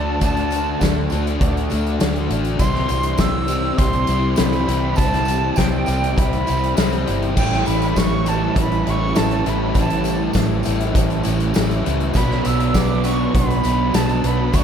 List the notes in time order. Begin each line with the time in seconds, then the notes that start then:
Already playing: D2 D3 A3 D4 F#4 A5
0.21 D2 D3 A3 D4 F#4 A5, kick, closed hi-hat, tambourine
0.37 closed hi-hat
0.51 closed hi-hat, tambourine
0.80 D2 D3 A3 D4, kick, snare, closed hi-hat, tambourine
1.10 D2 D3 A3 D4 F#4, closed hi-hat, tambourine
1.14 A3
1.27 closed hi-hat
1.41 D2 D3 A3 D4, kick, closed hi-hat
1.57 closed hi-hat
1.70 D2 A3 D4 F#4, closed hi-hat, tambourine
1.86 closed hi-hat
2.00 D2 D3 A3 D4 F#4, snare, closed hi-hat, tambourine
2.16 closed hi-hat
2.29 A1 D3 A3 D4 F#4, closed hi-hat
2.33 A3
2.44 closed hi-hat
2.58 C2 C3 E3 G3 C4 C6, kick, closed hi-hat, tambourine
2.63 E4
2.75 snare
2.89 C2, closed hi-hat, tambourine
3.03 closed hi-hat
3.17 C2 C3 G3 C4 E6, kick, snare, closed hi-hat, tambourine
3.47 C3 G3 C4 E4, closed hi-hat, tambourine
3.51 G3 C4
3.77 C2 C3 G3 C4 C6, kick, closed hi-hat
3.93 closed hi-hat
4.07 C2 C4 E4, closed hi-hat, tambourine
4.11 G3
4.36 C2 C3 E3 G3 C4 B5, snare, closed hi-hat, tambourine
4.40 C4 E4
4.53 closed hi-hat
4.67 C2 C3 G3 C4 E4, closed hi-hat
4.96 C2 C3 E3 G3 C4 A5, kick, closed hi-hat, tambourine
5.01 E4
5.14 snare, closed hi-hat
5.25 closed hi-hat, tambourine
5.56 C2 C3 G3 C4 G5, kick, snare, closed hi-hat, tambourine
5.86 C2 C3 G3 C4 E4, closed hi-hat, tambourine
6.04 closed hi-hat
6.16 C2 C3 G3 C4 B5, kick, closed hi-hat, tambourine
6.33 closed hi-hat
6.47 C2 G3 C4 E4, closed hi-hat, tambourine
6.63 closed hi-hat
6.76 C2 C3 E3 G3 C4, snare, closed hi-hat, tambourine
6.80 E4
6.92 closed hi-hat
7.06 G1 C3 G3 C4 E4, closed hi-hat
7.10 G3
7.22 closed hi-hat
7.36 A1 A2 E3 G3 A3 G5, kick, crash, tambourine
7.40 C#4 E4
7.53 snare
7.66 A1 B5, closed hi-hat, tambourine
7.82 closed hi-hat
7.95 A1 A2 E3 A3 C#6, kick, snare, closed hi-hat, tambourine
8.26 A2 E3 G3 A3 C#4 E4 A5, closed hi-hat, tambourine
8.56 A1 A2 E3 A3, kick, closed hi-hat
8.60 B5
8.72 closed hi-hat
8.86 A1 G3 C#4 E4, closed hi-hat
8.90 C#6
9.15 A1 A2 E3 G3 A3 C#4 A5, snare, closed hi-hat, tambourine
9.19 E4
9.31 closed hi-hat
9.45 A1 A2 E3 G3 A3 C#4 E4, closed hi-hat
9.49 B5
9.74 A1 A2 E3 G3 A3 C#4 E4, kick, closed hi-hat, tambourine
9.81 A5
9.90 closed hi-hat
10.04 closed hi-hat, tambourine
10.33 A1 A2 E3 A3, kick, snare, closed hi-hat, tambourine
10.63 A2 E3 A3 C#4 E4, closed hi-hat, tambourine
10.67 A1 G3
10.80 closed hi-hat
10.94 A1 A2 E3 A3, kick, closed hi-hat
11.10 closed hi-hat
11.23 A1 G3 C#4 E4, closed hi-hat, tambourine
11.40 closed hi-hat
11.54 A1 A2 E3 G3 A3 C#4 E4, snare, closed hi-hat, tambourine
11.71 closed hi-hat
11.85 C#2 A2 E3 G3 A3 C#4 E4, closed hi-hat
12.00 closed hi-hat
12.13 B1 B2 F#3 B3 D4 B5, kick, closed hi-hat, tambourine
12.31 snare
12.45 B1 E6, closed hi-hat, tambourine
12.60 closed hi-hat
12.74 B1 B2 F#3 B3 D6, kick, snare, closed hi-hat, tambourine
13.04 B2 F#3 B3 D4 C#6, closed hi-hat, tambourine
13.08 F#3
13.34 B1 B2 F#3 B3 B5, kick, closed hi-hat
13.50 closed hi-hat
13.64 B1 F#3 B3 D4, closed hi-hat, tambourine
13.93 B1 B2 F#3 B3 D4 A5, snare, closed hi-hat, tambourine
14.09 closed hi-hat
14.23 B1 B2 F#3 B3 D4 B5, closed hi-hat
14.53 D2 D3 F#3 A3 D4 C#6, kick, closed hi-hat, tambourine